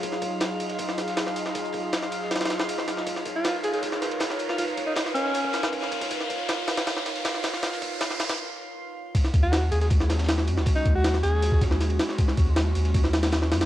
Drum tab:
RD |x---x---x---x-x-x---x-x-x---x---|x---x---x---x---xxxxx---x---x---|x---x---x---x-x-x---x-x-x---x---|x---x---x---x---x---x---x---x-x-|
HH |x-x-x---x---x---x---x---x---x---|x-x-x---x-x-x---x---x---x---x---|x-x-x---x---x---x---x---x---x---|x-x-x---x-x-x---x---x---x---x---|
SD |--o-----o-o---o---o-o-o-o-o---o-|--------o-o---o-ooooo-o---o-o-o-|--o-----o-o---o---o-o-o-o-o---o-|--------o-o---o-----o-o---o---o-|
BD |o---o-----------o---------------|o---o---------------------------|o---o-----------o---------------|o---o-------------o-----o---o-o-|

RD |x---x---x---x-x-x---x-x-x---x---|x---x---x---x-x-----------------|x---x---x---x-x-x---x-x-x---x---|x---x---x---x---x---x---x-x-x---|
HH |x-x-x---x---x---x---x---x---x-x-|x-x-x---x-x-x-------------------|x-x-x---x---x---x---x-xxx---x---|x-x-x---x-x-x---x---x---x---x---|
SD |--o-----o-o-o-o-o-o-o-o-o-o-o-o-|o-o-----o-o-o-o-----------------|--o-----o-o---o---o-o-ooo-o---o-|--------o-o---o-----o-o-o---o-o-|
BD |o---o---------------------------|----o---------------------------|o---o-----------o---------------|o---o-------------o-o-----------|

RD |x---x---x---x-x-x---x-x-x---x-x-|
HH |x-x-x---x---x---x---x---x---x---|
SD |--o-----o-o---o---o-o-o-o-o-o-o-|
BD |o---o-----------o---------------|